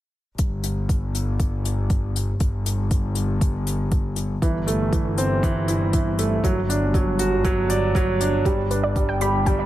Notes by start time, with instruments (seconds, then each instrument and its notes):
0.38 double bass section G1, kick, closed hi-hat
0.64 closed hi-hat
0.89 kick, closed hi-hat
1.15 closed hi-hat
1.40 kick, closed hi-hat
1.65 closed hi-hat
1.90 kick, closed hi-hat
2.16 closed hi-hat
2.40 double bass section G1, kick, closed hi-hat
2.66 closed hi-hat
2.91 kick, closed hi-hat
3.15 closed hi-hat
3.41 kick, closed hi-hat
3.67 closed hi-hat
3.92 kick, closed hi-hat
4.16 closed hi-hat
4.42 double bass section G1, grand piano E3, kick, closed hi-hat
4.67 grand piano A3, closed hi-hat
4.92 grand piano E3, kick, closed hi-hat
5.18 grand piano C4, closed hi-hat
5.43 grand piano E3, kick, closed hi-hat
5.68 grand piano E4, closed hi-hat
5.93 grand piano E3, kick, closed hi-hat
6.18 grand piano A3, closed hi-hat
6.44 double bass section G1, grand piano F#3, kick, closed hi-hat
6.69 grand piano D4, closed hi-hat
6.94 grand piano F#3, kick, closed hi-hat
7.19 grand piano F#4, closed hi-hat
7.44 grand piano F#3, kick, closed hi-hat
7.70 grand piano D5, closed hi-hat
7.95 grand piano F#3, kick, closed hi-hat
8.21 grand piano D4, closed hi-hat
8.45 double bass section G1, grand piano G3, synth arpeggio sound G4, kick, closed hi-hat
8.71 grand piano D4, synth arpeggio sound B4, closed hi-hat
8.83 synth arpeggio sound D5
8.96 grand piano G3, kick, closed hi-hat
9.09 synth arpeggio sound G5
9.21 grand piano G4, synth arpeggio sound B5, closed hi-hat
9.46 grand piano G3, synth arpeggio sound G5, kick, closed hi-hat
9.59 synth arpeggio sound D5